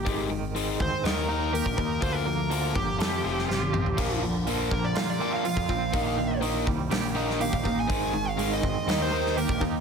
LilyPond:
<<
  \new Staff \with { instrumentName = "Lead electric guitar" } { \time 4/4 \key ees \lydian \tempo 4 = 122 g'8 r4 c''8 bes'4 bes'8 bes'8 | c''16 bes'4~ bes'16 g'2~ g'8~ | g'8 r4 bes'16 d''16 f''16 d''8 f''16 f''4~ | f''4 r2 f''16 f''8 aes''16~ |
aes''8. f''8 ees''4 c''8. bes'8 r8 | }
  \new Staff \with { instrumentName = "Clean electric guitar" } { \time 4/4 \key ees \lydian aes,8 ees8 aes8 c'8 ees8 ees'8 g'8 ees'8 | d8 bes8 d8 bes8 f8 c'8 f'8 c'8 | bes,8 d8 d8 bes8 f'8 c'8 f'8 c'8 | bes,8 ees8 ees8 g8 g'8 ees'8 g'8 ees'8 |
aes,8 ees8 aes8 c'8 ees8 ees'8 g'8 ees'8 | }
  \new Staff \with { instrumentName = "Distorted electric guitar" } { \clef bass \time 4/4 \key ees \lydian r1 | r1 | <bes, f bes>8 <bes, f>8 <bes, f bes>8 <bes, f>8 <bes, f>8 <bes, f bes>8 <bes, f>8 <bes, f>8 | <ees bes ees'>8 <ees bes>8 <ees bes ees'>8 <ees bes>8 <ees bes>8 <ees bes ees'>8 <ees bes>8 <ees bes>8 |
<aes, ees aes>8 <aes, ees>8 <aes, ees aes>8 <aes, ees>8 <ees bes ees'>8 <ees bes ees'>8 <ees bes>8 <ees bes>8 | }
  \new Staff \with { instrumentName = "Overdriven electric guitar" } { \clef bass \time 4/4 \key ees \lydian <aes, ees aes>8 <aes, ees>8 <aes, ees aes>8 <aes, ees>8 <ees bes ees'>8 <ees bes ees'>8 <ees bes>8 <ees bes>8 | <bes, f bes>8 <bes, f>8 <bes, f bes>8 <bes, f>8 <f, c f>8 <f, c f>8 <f, c>8 <f, c>8 | <bes, f bes>8 <bes, f>8 <bes, f bes>8 <bes, f>8 <bes, f>8 <bes, f bes>8 <bes, f>8 <bes, f>8 | <ees bes ees'>8 <ees bes>8 <ees bes ees'>8 <ees bes>8 <ees bes>8 <ees bes ees'>8 <ees bes>8 <ees bes>8 |
<aes, ees aes>8 <aes, ees>8 <aes, ees aes>8 <aes, ees>8 <ees bes ees'>8 <ees bes ees'>8 <ees bes>8 <ees bes>8 | }
  \new Staff \with { instrumentName = "Picked electric bass" } { \clef bass \time 4/4 \key ees \lydian aes,,4. d,16 r16 ees,4~ ees,16 bes,,16 ees,8 | d,4. g,,8 f,8 f,,8 g,,8 a,,8 | bes,,4. bes,,8 r4 r16 f,16 bes,,8 | bes,,4. c,8 bes,,4~ bes,,16 bes,,16 a,,8 |
aes,,4. aes,,16 r16 ees,4~ ees,16 bes,,16 ees,8 | }
  \new DrumStaff \with { instrumentName = "Drums" } \drummode { \time 4/4 <hho bd>4 hho8 bd8 <hho sn>4 hho16 bd16 bd8 | <hho bd>4 hho8 bd8 <hho sn>8. sn16 sn16 tommh16 toml16 tomfh16 | <cymc hho bd>4 hho8 bd8 <hho sn>4 hho16 bd16 bd8 | <hho bd>4 hho8 bd8 <hho sn>8. sn16 hho16 bd16 bd8 |
<hho bd>4 hho8 bd8 <hho sn>8. sn16 hho16 bd16 bd8 | }
>>